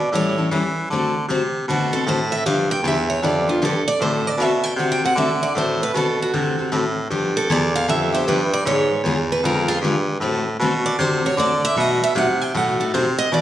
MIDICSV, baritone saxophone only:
0, 0, Header, 1, 2, 480
1, 0, Start_track
1, 0, Tempo, 388098
1, 1113, Time_signature, 4, 2, 24, 8
1, 16589, End_track
2, 0, Start_track
2, 0, Title_t, "Baritone saxophone"
2, 0, Program_c, 0, 67
2, 0, Note_on_c, 0, 47, 97
2, 138, Note_off_c, 0, 47, 0
2, 147, Note_on_c, 0, 45, 86
2, 616, Note_off_c, 0, 45, 0
2, 632, Note_on_c, 0, 52, 91
2, 1098, Note_off_c, 0, 52, 0
2, 1115, Note_on_c, 0, 50, 86
2, 1579, Note_off_c, 0, 50, 0
2, 1587, Note_on_c, 0, 48, 90
2, 2055, Note_off_c, 0, 48, 0
2, 2075, Note_on_c, 0, 47, 83
2, 2539, Note_off_c, 0, 47, 0
2, 2553, Note_on_c, 0, 45, 95
2, 3018, Note_off_c, 0, 45, 0
2, 3037, Note_on_c, 0, 43, 92
2, 3494, Note_off_c, 0, 43, 0
2, 3501, Note_on_c, 0, 40, 98
2, 3971, Note_off_c, 0, 40, 0
2, 3984, Note_on_c, 0, 41, 85
2, 4453, Note_off_c, 0, 41, 0
2, 4470, Note_on_c, 0, 43, 92
2, 4751, Note_off_c, 0, 43, 0
2, 4767, Note_on_c, 0, 43, 39
2, 4857, Note_off_c, 0, 43, 0
2, 4936, Note_on_c, 0, 45, 83
2, 5399, Note_off_c, 0, 45, 0
2, 5407, Note_on_c, 0, 47, 97
2, 5884, Note_off_c, 0, 47, 0
2, 5892, Note_on_c, 0, 48, 91
2, 6366, Note_off_c, 0, 48, 0
2, 6376, Note_on_c, 0, 50, 92
2, 6848, Note_off_c, 0, 50, 0
2, 6865, Note_on_c, 0, 45, 88
2, 7333, Note_off_c, 0, 45, 0
2, 7346, Note_on_c, 0, 47, 85
2, 7814, Note_off_c, 0, 47, 0
2, 7835, Note_on_c, 0, 48, 84
2, 8299, Note_off_c, 0, 48, 0
2, 8309, Note_on_c, 0, 45, 89
2, 8776, Note_off_c, 0, 45, 0
2, 8785, Note_on_c, 0, 43, 88
2, 9254, Note_off_c, 0, 43, 0
2, 9274, Note_on_c, 0, 40, 100
2, 9738, Note_off_c, 0, 40, 0
2, 9747, Note_on_c, 0, 41, 91
2, 10215, Note_off_c, 0, 41, 0
2, 10224, Note_on_c, 0, 43, 104
2, 10693, Note_off_c, 0, 43, 0
2, 10701, Note_on_c, 0, 44, 88
2, 11166, Note_off_c, 0, 44, 0
2, 11174, Note_on_c, 0, 40, 94
2, 11649, Note_off_c, 0, 40, 0
2, 11661, Note_on_c, 0, 41, 94
2, 12129, Note_off_c, 0, 41, 0
2, 12137, Note_on_c, 0, 43, 95
2, 12610, Note_off_c, 0, 43, 0
2, 12619, Note_on_c, 0, 45, 86
2, 13092, Note_off_c, 0, 45, 0
2, 13100, Note_on_c, 0, 47, 102
2, 13572, Note_off_c, 0, 47, 0
2, 13590, Note_on_c, 0, 48, 90
2, 14058, Note_off_c, 0, 48, 0
2, 14063, Note_on_c, 0, 50, 90
2, 14534, Note_off_c, 0, 50, 0
2, 14561, Note_on_c, 0, 47, 97
2, 15023, Note_off_c, 0, 47, 0
2, 15030, Note_on_c, 0, 48, 96
2, 15497, Note_off_c, 0, 48, 0
2, 15512, Note_on_c, 0, 45, 86
2, 15979, Note_off_c, 0, 45, 0
2, 16003, Note_on_c, 0, 48, 103
2, 16464, Note_off_c, 0, 48, 0
2, 16471, Note_on_c, 0, 47, 89
2, 16589, Note_off_c, 0, 47, 0
2, 16589, End_track
0, 0, End_of_file